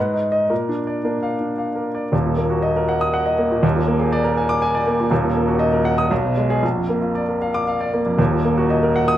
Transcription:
Already playing: G#2 B4
0.14 D#4
0.32 D#5
0.50 A#2 A#4
0.69 D4
0.87 D5
1.04 A#3 D4
1.23 F5
1.40 D4
1.58 F5
1.76 A#4
1.95 D5
2.12 D#1 D#2
2.26 A#2
2.37 A#3
2.50 F#4
2.62 D#5
2.76 A#4
2.89 F#5
3.01 D#6
3.14 F#5
3.26 D#5
3.38 A#3
3.51 A#2
3.62 D#1 D#2
3.76 A#2
3.87 A#3
3.99 G#4
4.12 D5
4.24 A#4
4.37 G#5
4.49 D6
4.62 G#5
4.75 D5
4.87 A#3
5.00 A#2
5.10 D#1 D#2
5.24 A#2
5.36 A#3
5.48 F#4
5.59 D#5
5.72 A#4
5.85 F#5
5.98 D#6
6.11 B1
6.25 B2
6.37 G#3
6.50 G#4
6.63 A#1
6.76 F2
6.89 A#3
7.02 F4
7.15 D5
7.29 A#4
7.42 F5
7.54 D6
7.68 F5
7.80 D5
7.93 A#3
8.06 F2
8.18 D#1 D#2
8.32 A#2
8.45 A#3
8.58 F#4
8.70 D#5
8.83 A#4
8.96 F#5
9.08 D#6

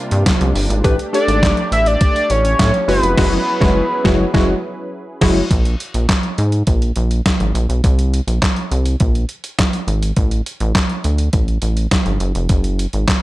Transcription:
Already playing: C3 G3 A#3 D4 F4
0.11 G2, closed hi-hat
0.26 kick, snare, clap, closed hi-hat
0.41 C2, closed hi-hat
0.55 G1, open hi-hat
0.70 G#1, closed hi-hat
0.84 A1 A3 D4 G4 B4, kick, closed hi-hat
0.99 closed hi-hat
1.13 A3 D4 G4 A4 D5, closed hi-hat
1.28 G#1, closed hi-hat
1.43 kick, snare, clap, closed hi-hat
1.57 closed hi-hat
1.72 A1 E5, closed hi-hat
1.86 D5, closed hi-hat
2.01 D5, kick, closed hi-hat
2.16 closed hi-hat
2.30 A1 C#5, closed hi-hat
2.45 closed hi-hat
2.59 A2, kick, snare, clap, closed hi-hat
2.74 closed hi-hat
2.88 F#1 F#3 G#3 C#4 E4 F#4 G#4 B4, open hi-hat
3.03 F1, closed hi-hat
3.17 F#1 G#3 E4 F#4 B4, kick, snare, crash
3.61 F#1 G#3 E4 F#4 C#5, kick, snare
4.04 F#1 G#3 E4 F#4 C#5, kick, snare
4.34 F#1 G#3 E4 F#4 C#5, kick, snare
5.21 F#1 G#3 E4 F#4 C#5, kick, snare, crash
5.51 A#1, kick, closed hi-hat
5.65 closed hi-hat
5.80 closed hi-hat
5.94 A#1, closed hi-hat
6.09 kick, snare, clap, closed hi-hat
6.23 closed hi-hat
6.38 G#2, closed hi-hat
6.52 closed hi-hat
6.67 A#1, kick, closed hi-hat
6.82 closed hi-hat
6.96 A#1, closed hi-hat
7.11 closed hi-hat
7.26 kick, snare, clap, closed hi-hat
7.40 G#1, closed hi-hat
7.55 A#1, closed hi-hat
7.69 B1, closed hi-hat
7.84 C2, kick, closed hi-hat
7.99 closed hi-hat
8.14 closed hi-hat
8.27 A#1, closed hi-hat
8.42 kick, snare, clap, closed hi-hat
8.56 closed hi-hat
8.71 C2, closed hi-hat
8.86 closed hi-hat
9.00 A#1, kick, closed hi-hat
9.15 closed hi-hat
9.29 closed hi-hat
9.44 closed hi-hat
9.59 kick, snare, clap, closed hi-hat
9.73 closed hi-hat
9.87 G#1, closed hi-hat
10.03 closed hi-hat
10.16 A1, kick, closed hi-hat
10.31 closed hi-hat
10.46 closed hi-hat
10.60 A1, closed hi-hat
10.75 kick, snare, clap, closed hi-hat
10.89 closed hi-hat
11.04 D2, closed hi-hat
11.18 closed hi-hat
11.33 A1, kick, closed hi-hat
11.48 closed hi-hat
11.62 A1, closed hi-hat
11.77 closed hi-hat
11.91 kick, snare, clap, closed hi-hat
12.06 G1, closed hi-hat
12.20 F#1, closed hi-hat
12.35 F1, closed hi-hat
12.49 F#1, kick, closed hi-hat
12.64 closed hi-hat
12.79 closed hi-hat
12.93 G#1, closed hi-hat
13.08 kick, snare, clap, closed hi-hat

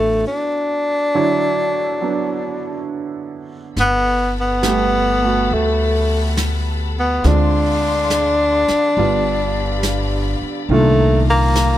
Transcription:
Already playing: A1 D3 F#3 A3 B3 C#4 E4 F#4
0.28 D4
1.15 D3 F#3 E4 C#5
2.01 F#3 B3 D4
3.76 G1 B3 A4 F#5 A5 B5, brush sweep, snare
4.41 B3
4.63 G3 A3 B3, snare, hi-hat pedal
4.67 G4
5.22 A3 F#4
5.51 D2 A3, brush sweep
6.37 snare, hi-hat pedal
6.99 B3
7.24 D2 D3 G#3 C4 D4 F4 G#4 D5 F5 C6, brush sweep, snare
8.10 snare, hi-hat pedal
8.68 muted upright bass stroke, snare
8.97 G1 D3 G3 B3 F4 G4 F5 B5, brush sweep
9.83 snare, hi-hat pedal
10.42 muted upright bass stroke
10.69 C2 A#2 D#3 A3 D4 F4 F5 A#5, brush sweep
11.30 A#3
11.55 snare, hi-hat pedal

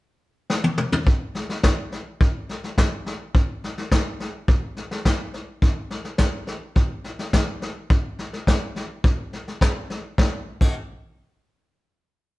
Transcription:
0.50 snare
0.64 high tom
0.78 mid tom
0.92 floor tom
1.06 kick, snare
1.35 snare
1.49 snare
1.63 kick, snare, hi-hat pedal
1.92 snare
2.21 kick, snare
2.49 snare
2.64 snare
2.78 kick, snare, hi-hat pedal
3.06 snare
3.35 kick, snare
3.64 snare
3.78 snare
3.92 kick, snare, hi-hat pedal
4.20 snare
4.48 kick, snare
4.77 snare
4.91 snare
5.05 kick, snare, hi-hat pedal
5.34 snare
5.62 kick, snare
5.90 snare
6.05 snare
6.18 kick, snare, hi-hat pedal
6.47 snare
6.75 kick, snare
7.04 snare
7.19 snare
7.33 kick, snare, hi-hat pedal
7.62 snare
7.90 kick, snare
8.19 snare
8.33 snare
8.47 kick, snare, hi-hat pedal
8.76 snare
9.04 kick, snare
9.33 snare
9.48 snare
9.61 kick, snare, hi-hat pedal
9.90 snare
10.18 kick, snare
10.61 kick, crash

